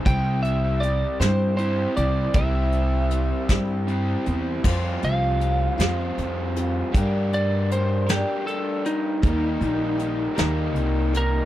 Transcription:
<<
  \new Staff \with { instrumentName = "Lead electric guitar" } { \time 6/8 \key c \mixolydian \tempo 4. = 52 g''8 e''8 d''8 c''8 c''8 d''8 | e''2 r4 | \key g \minor r8 f''2~ f''8~ | f''8 d''8 c''8 g'8 a'8 ees'8~ |
ees'4. r4 bes'8 | }
  \new Staff \with { instrumentName = "Overdriven electric guitar" } { \time 6/8 \key c \mixolydian <c g c' e' g'>2 <c g c' e' g'>4 | <c g c' e' g'>2 <c g c' e' g'>4 | \key g \minor <f g c' f' c''>4. <f g c' f' c''>4. | <g d' g' bes'>4. <g d' g' bes'>4. |
<ees g bes g' bes'>4. <ees g bes g' bes'>4. | }
  \new Staff \with { instrumentName = "Twelve-string acoustic guitar" } { \time 6/8 \key c \mixolydian <c g c' e' g'>4 <g c' e' g'>8 <c g c' e' g'>4 <c' e' g'>8 | <c g c' e' g'>4 <g c' e' g'>8 <c g c' e' g'>4 <c' e' g'>8 | \key g \minor <f c' f' g'>4 <f c' f' g'>8 <f c' f' g'>4 <c' f' g'>8 | <g, d g bes d' g'>4 <g bes d' g'>8 <g, d g bes d' g'>4 <g bes g'>8 |
<ees g bes ees' g'>4 <g bes ees' g'>8 <ees g bes ees' g'>4 <bes ees' g'>8 | }
  \new Staff \with { instrumentName = "Upright bass" } { \clef bass \time 6/8 \key c \mixolydian c,4. g,4 c,8 | c,4. g,4 e,8 | \key g \minor f,8 c,4 f,8 f,4 | g,2 r4 |
ees,8 bes,,4 ees,8 c,4 | }
  \new DrumStaff \with { instrumentName = "Drums" } \drummode { \time 6/8 <hh bd>8 hh8 hh8 <hh sn>8 hh8 hh8 | <hh bd>8 hh8 hh8 <hh bd sn>8 hh8 hh8 | <cymc bd>8 hh8 hh8 <hh sn>8 hh8 hh8 | <hh bd>8 hh8 hh8 <hh sn>8 hh8 hh8 |
<hh bd>8 hh8 hh8 <hh sn>8 hh8 hh8 | }
>>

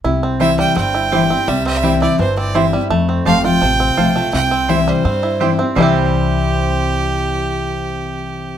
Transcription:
<<
  \new Staff \with { instrumentName = "Fiddle" } { \time 4/4 \key c \major \tempo 4 = 168 r4 e''8 g''8 g''2 | e''8 e''4 d''8 c''8 d''8 e''8. r16 | r4 f''8 g''2~ g''8 | g''4 e''8 c''2 r8 |
g'1~ | g'1 | }
  \new Staff \with { instrumentName = "Mandolin" } { \time 4/4 \key c \major r4 <c' e' c'' g''>16 r4. r16 <c' e' c'' g''>16 r8. | r4 <c' e' c'' g''>16 r4. r16 <c' e' c'' g''>16 r8. | r4 <c' f' c'' a''>16 r4. r16 <c' f' c'' a''>16 r8. | r4 <c' e' c'' g''>16 r4. r16 <c' e' c'' g''>16 r8. |
<c' e' c'' g''>1~ | <c' e' c'' g''>1 | }
  \new Staff \with { instrumentName = "Five-string banjo" } { \time 4/4 \key c \major e'8 c'8 e'8 g8 c'8 e'8 g'8 c'8 | g8 c'8 g'8 e'8 e8 c'8 e'8 g8 | a8 c'8 g'8 f'8 f8 c'8 f'8 a8 | e'8 c'8 e'8 g8 c'8 e'8 g'8 c'8 |
<g c' e' g'>1~ | <g c' e' g'>1 | }
  \new Staff \with { instrumentName = "Steel-string acoustic guitar" } { \time 4/4 \key c \major << { r4 <e g c' e'>4 r4 <e g c' e'>8 <c' e'>8 | r4 <e g c' e'>4 r4 <e g c' e'>8 <c' e'>8 | r4 <f a c' f'>8 <c' f'>8 r4 <f a c' f'>8 <c' f'>8 | r4 <e g c' e'>4 r4 <e g c' e'>8 <c' e'>8 |
<c e g c' e'>1~ | <c e g c' e'>1 | } \\ { c2 g,2 | c2 g,2 | f,2 c2 | c2 g,2 |
r1 | r1 | } >> }
  \new Staff \with { instrumentName = "Upright bass" } { \clef bass \time 4/4 \key c \major c,2 g,,2 | c,2 g,,2 | f,4 g,,4 a,,4 b,,4 | c,2 g,2 |
c,1~ | c,1 | }
>>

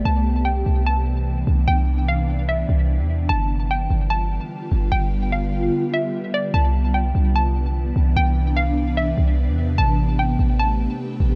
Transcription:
<<
  \new Staff \with { instrumentName = "Synth pluck" } { \time 4/4 \key c \major \tempo 4 = 148 a''4 g''4 a''2 | g''4 f''4 e''2 | a''4 g''4 a''2 | g''4 f''4. e''4 d''8 |
a''4 g''4 a''2 | g''4 f''4 e''2 | a''4 g''4 a''2 | }
  \new Staff \with { instrumentName = "Ambient pad" } { \time 4/4 \key c \major << { <e d'>1~ | <e d'>1 | <g f'>1~ | <g f'>1 |
<e d'>1~ | <e d'>1 | <a g'>1 | } \\ { <c b>1~ | <c b>1 | <d b>1~ | <d b>1 |
<c b>1~ | <c b>1~ | <c b>1 | } >> }
  \new Staff \with { instrumentName = "808-style bass" } { \clef bass \time 4/4 \key c \major c,4. c,2 c,8 | c,2~ c,8 c,8. e,8. | g,,4. g,,4~ g,,16 r8. g,,8 | g,,2 r2 |
c,4. c,2 c,8 | c,2~ c,8 c,8. e,8. | a,,4. a,,4~ a,,16 r8. a,,8 | }
>>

